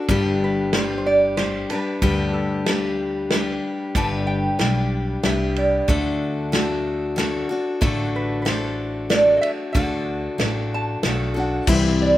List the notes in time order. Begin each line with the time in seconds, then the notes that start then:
0.08 G1 G2 D3 G3 D4 G4 B4, kick, ride
0.44 B4
0.73 G3 D4 G4 C5, snare, ride
0.77 B4
0.98 C5
1.06 D5
1.37 G3 D4 G4 C5, snare, ride
1.69 D4 G4 B4, ride
1.73 G3
2.02 D2 G2 D3 G3 D4 G4 B4, kick, ride
2.20 A4
2.33 A4
2.66 G3 D4 G4 B4, snare, ride
3.30 G3 D4 G4, snare, ride
3.35 B4
3.95 G1 G2 D3 G3 D4 G4 B4 A5, kick, ride
4.27 G5
4.59 B1 G3 D4 G4 B4, snare, ride
5.23 C2 G3 D4 G4 B4 E5, snare, ride
5.56 D5, ride
5.88 D2 D3 A3 D4 F#4 A4, kick, ride
6.52 A3 D4 F#4 A4, snare, ride
7.16 A3 D4 F#4 A4, snare, ride
7.49 D4 F#4 A4
7.81 A1 D3 A3 D4 F#4 A4, kick, ride
8.16 B4
8.42 A3 B4, snare, ride
8.46 D4 F#4 A4 C5
9.10 A3 D4 F#4 A4 D5, snare, ride
9.37 D#5
9.41 E5, ride
9.73 D2 D3 A3 D4 F#4 F#5, kick, ride
9.77 A4
10.38 A1 A3 D4 F#4 A4, snare, ride
10.58 E5
10.74 A5
11.03 B1 A3 D4 F#4 A4, snare, ride
11.34 D4 F#4 A4
11.39 F#5
11.67 C2 C3 E3 G3 C4 E4 C5, kick, crash
11.72 E5
12.02 D5